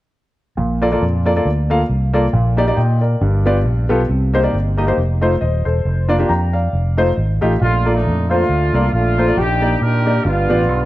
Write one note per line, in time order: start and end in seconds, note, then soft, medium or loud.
0.57 0.95 A#1 medium
0.57 1.22 A#2 medium
0.82 0.87 A#3 medium
0.82 0.87 F4 medium
0.82 0.87 A4 medium
0.82 0.87 D5 medium
0.92 1.02 A#3 medium
0.92 1.02 F4 medium
0.92 1.03 A4 medium
0.92 1.03 D5 medium
1.02 1.39 F2 medium
1.25 1.31 A#3 medium
1.25 1.31 F4 medium
1.25 1.31 A4 medium
1.25 1.31 D5 medium
1.36 1.46 A#3 medium
1.36 1.46 F4 medium
1.36 1.46 A4 medium
1.36 1.47 D5 medium
1.45 1.83 D2 medium
1.70 1.80 A#3 medium
1.70 1.80 F4 medium
1.70 1.80 A4 medium
1.70 1.81 F5 medium
1.90 2.27 C2 medium
2.14 2.24 A#3 medium
2.14 2.24 F4 medium
2.14 2.24 A4 medium
2.14 2.24 D5 medium
2.33 2.71 A#1 medium
2.33 2.98 A#2 medium
2.57 2.62 A#3 medium
2.57 2.63 D#4 medium
2.57 2.63 G4 medium
2.57 2.63 D5 medium
2.66 2.77 A#3 medium
2.66 2.78 D#4 medium
2.66 2.78 G4 medium
2.66 2.77 D5 medium
2.77 3.15 A#2 medium
2.77 3.01 D#5 soft
2.77 3.00 G5 medium
3.01 3.44 A#4 soft
3.01 3.43 D5 medium
3.21 3.65 G1 loud
3.21 3.86 G2 medium
3.46 3.56 B3 medium
3.46 3.56 F4 medium
3.46 3.56 G4 medium
3.46 3.56 D5 medium
3.65 3.86 A#1 medium
3.89 4.06 B1 medium
3.89 4.00 B3 medium
3.89 4.00 F4 medium
3.89 4.00 G4 medium
3.89 4.00 A4 medium
4.09 4.47 C2 medium
4.09 4.74 C3 medium
4.34 4.39 A#3 medium
4.34 4.39 D#4 medium
4.34 4.39 G4 medium
4.34 4.39 C5 medium
4.43 4.54 A#3 medium
4.43 4.54 D#4 medium
4.43 4.54 G4 medium
4.43 4.54 D5 medium
4.53 4.91 G1 medium
4.77 4.83 A#3 medium
4.77 4.83 D#4 medium
4.77 4.83 G4 medium
4.77 4.83 D#5 medium
4.87 4.97 A#3 medium
4.87 4.97 D#4 medium
4.87 4.97 G4 medium
4.87 4.98 C5 medium
4.97 5.35 F1 loud
5.21 5.32 A3 medium
5.21 5.32 D#4 medium
5.21 5.32 F4 medium
5.21 5.32 C5 medium
5.41 5.62 D#1 medium
5.41 5.64 C5 soft
5.41 5.64 D#5 medium
5.65 5.82 E1 medium
5.65 6.08 A4 medium
5.65 6.07 C5 medium
5.85 6.23 F1 medium
6.09 6.14 A#3 medium
6.09 6.14 D4 medium
6.09 6.15 F4 medium
6.09 6.15 D5 medium
6.19 6.29 A#3 medium
6.19 6.30 D4 medium
6.19 6.30 F4 medium
6.19 6.30 G4 medium
6.29 6.67 F2 medium
6.29 6.53 G5 medium
6.29 6.53 A#5 medium
6.53 6.96 D5 soft
6.53 6.95 F5 medium
6.73 7.11 F1 medium
6.97 7.08 A3 medium
6.97 7.08 D#4 medium
6.97 7.08 F4 medium
6.97 7.08 C5 medium
7.17 7.38 G#1 medium
7.41 7.58 A1 medium
7.41 7.52 A3 medium
7.41 7.52 D#4 medium
7.41 7.52 F4 medium
7.41 7.52 G4 medium
7.61 8.07 A#1 medium
7.61 8.26 A#2 medium
7.61 7.94 A3 medium
7.61 8.29 D4 medium
7.61 7.93 F4 medium
7.85 7.96 A#3 medium
7.85 7.96 F4 medium
7.85 7.96 A4 medium
7.85 7.96 D5 medium
7.94 8.29 A3 medium
7.94 8.29 D#4 medium
8.05 8.43 F2 medium
8.29 8.93 A3 medium
8.29 8.40 A#3 medium
8.29 8.93 D4 medium
8.29 8.91 F4 medium
8.29 8.40 F4 medium
8.29 8.40 A4 medium
8.29 8.40 C5 medium
8.49 8.70 D2 medium
8.73 8.90 C2 medium
8.73 8.84 A#3 medium
8.73 8.84 F4 medium
8.73 8.85 A4 medium
8.73 8.85 D5 medium
8.93 9.31 A#1 medium
8.93 9.35 A3 medium
8.93 9.35 D4 medium
8.93 9.34 F4 medium
9.18 9.23 A#3 medium
9.18 9.23 F4 medium
9.18 9.23 A4 medium
9.18 9.23 C5 medium
9.27 9.37 A#3 medium
9.27 9.37 F4 medium
9.27 9.37 A4 medium
9.27 9.38 D5 medium
9.37 9.74 A#1 medium
9.37 10.02 A#2 medium
9.37 9.80 D4 medium
9.37 10.21 D#4 medium
9.37 9.80 G4 loud
9.61 9.72 A#3 medium
9.61 9.72 D#4 medium
9.61 9.72 G4 medium
9.61 9.72 D5 medium
9.80 10.18 A#2 medium
9.80 10.22 D4 medium
9.80 10.22 G4 medium
9.80 10.25 A#4 loud
10.06 10.16 A#3 medium
10.06 10.16 D#4 medium
10.06 10.16 G4 medium
10.06 10.17 D5 medium
10.24 10.46 G1 medium
10.24 10.85 G2 medium
10.24 10.85 B3 medium
10.24 10.85 D4 medium
10.24 10.85 F4 medium
10.49 10.69 A1 medium
10.49 10.60 B3 medium
10.49 10.60 F4 medium
10.49 10.60 G4 medium
10.49 10.60 D5 medium
10.69 10.85 B1 medium